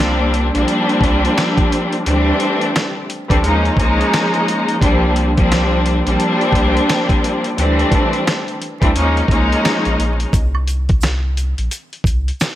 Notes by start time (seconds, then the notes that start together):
Already playing: C2 F3 G3 A#3 C4 D4
0.00 snare, closed hi-hat
0.34 closed hi-hat
0.53 A#1 F3 G3 A#3 C4 D4, closed hi-hat
0.68 closed hi-hat
0.89 closed hi-hat
1.01 C2, kick, closed hi-hat
1.25 closed hi-hat
1.38 snare, closed hi-hat
1.58 kick, closed hi-hat
1.72 closed hi-hat
1.92 closed hi-hat
2.05 D2 E3 G3 A3 C4 D4, closed hi-hat
2.40 closed hi-hat
2.61 closed hi-hat
2.76 snare, closed hi-hat
3.10 closed hi-hat
3.29 D2 E3 G3 A3 C4 D4, kick, closed hi-hat
3.44 D#2 F3 G#3 A#3 C#4 D#4, closed hi-hat
3.65 closed hi-hat
3.77 C2 F3 G#3 A#3 C#4 D#4, kick, closed hi-hat
4.01 closed hi-hat
4.14 snare, closed hi-hat
4.34 closed hi-hat
4.48 closed hi-hat
4.69 closed hi-hat
4.81 C2 F3 G3 A#3 C4 D4, kick, closed hi-hat
5.16 closed hi-hat
5.37 F3 G3 A#3 C4 D4, kick, closed hi-hat
5.52 snare, closed hi-hat
5.86 closed hi-hat
6.05 A#1 F3 G3 A#3 C4 D4, closed hi-hat
6.20 closed hi-hat
6.41 closed hi-hat
6.52 C2, kick, closed hi-hat
6.77 closed hi-hat
6.89 snare, closed hi-hat
7.09 kick, closed hi-hat
7.24 closed hi-hat
7.44 closed hi-hat
7.57 D2 E3 G3 A3 C4 D4, closed hi-hat
7.79 closed hi-hat
7.92 kick, closed hi-hat
8.13 closed hi-hat
8.27 snare, closed hi-hat
8.48 closed hi-hat
8.62 closed hi-hat
8.81 D2 E3 G3 A3 C4 D4, kick, closed hi-hat
8.95 D#2 F3 G#3 A#3 C#4 D#4, closed hi-hat
9.17 closed hi-hat
9.28 C2 F3 G#3 A#3 C#4 D#4, kick, closed hi-hat
9.52 closed hi-hat
9.65 snare, closed hi-hat
9.85 A#1, closed hi-hat
9.99 A#1, closed hi-hat
10.20 closed hi-hat
10.33 C2, kick, closed hi-hat, shaker
10.55 high woodblock
10.67 closed hi-hat, shaker
10.89 kick, closed hi-hat
11.01 snare, closed hi-hat, shaker
11.37 closed hi-hat, shaker
11.58 A#1, closed hi-hat
11.71 closed hi-hat, shaker
11.93 closed hi-hat
12.04 C2, kick, closed hi-hat, shaker
12.28 closed hi-hat
12.40 snare, closed hi-hat, shaker